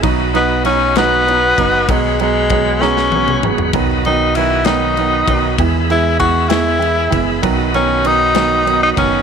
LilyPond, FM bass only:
\new Staff \with { instrumentName = "FM bass" } { \clef bass \time 6/8 \key b \major \tempo 4. = 65 b,,2~ b,,8 fis,,8 | b,,2~ b,,8 fis,,8 | b,,2~ b,,8 b,,8 | e,2~ e,8 fis,,8 |
b,,2~ b,,8 fis,,8 | }